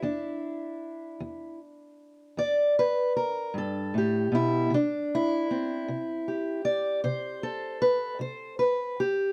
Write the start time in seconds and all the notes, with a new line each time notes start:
Already playing: E4
0.02 E2 D4
1.20 E2
2.37 E2 D5
2.79 B4
3.17 A#4
3.54 G2
3.58 A4
3.94 A2 G4
4.32 B2 E4
4.70 C3
4.74 D4
5.15 E4
5.51 C4
5.88 C3
6.28 G4
6.65 D5
7.04 C3 C5
7.43 A4
7.82 B4
8.19 C3 C5
8.59 B4
9.00 G4